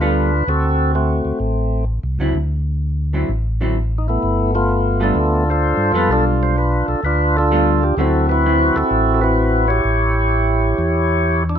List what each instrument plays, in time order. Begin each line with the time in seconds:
Already playing: tonewheel organ D2
0.01 hollow-body jazz guitar G3 B3 F4 A4, tonewheel organ D4 F4 B4
0.47 tonewheel organ D2 C4 F#4 A4
0.95 tonewheel organ A3 C4 F#4
1.25 tonewheel organ D2
1.40 tonewheel organ A1
2.03 tonewheel organ C2
2.19 tonewheel organ C#2, hollow-body jazz guitar D3 F#3 C4 E4
2.35 tonewheel organ D2
3.13 hollow-body jazz guitar D3 F#3 C4 E4
3.29 tonewheel organ A1
3.61 hollow-body jazz guitar D3 F#3 C4 E4
3.98 tonewheel organ D#4
4.08 tonewheel organ A3 B3 E4
4.23 tonewheel organ G1
4.55 tonewheel organ A3 B3 F4
5.00 hollow-body jazz guitar G3 B3 F4 A4, tonewheel organ D4 A4
5.04 tonewheel organ F4
5.15 tonewheel organ D2
5.50 tonewheel organ F4 A4 C5
5.77 tonewheel organ G2
5.93 tonewheel organ F2 B4, hollow-body jazz guitar G3 B3 F4 A4
6.09 tonewheel organ B1 D4 F4 A4
6.43 tonewheel organ C5
6.58 tonewheel organ B4
6.88 tonewheel organ B1 A4
7.03 tonewheel organ D2 D4 F4 B4
7.37 tonewheel organ D4 F4 A4
7.51 hollow-body jazz guitar G3 B3 F4 A4
7.83 tonewheel organ G4
7.97 tonewheel organ D2 C4 F#4 A4, hollow-body jazz guitar D3 F#3 C4 E4
8.29 tonewheel organ E4 F#4 B4
8.46 hollow-body jazz guitar D3 F#3 C4 E4
8.76 tonewheel organ D2 C4 F#4 A4
8.91 tonewheel organ A1
9.14 tonewheel organ A4
9.21 tonewheel organ E4 F#4 B4
9.68 tonewheel organ E4 G4 C#5
9.84 tonewheel organ A1
10.78 tonewheel organ E2
11.49 tonewheel organ D4
11.56 tonewheel organ E4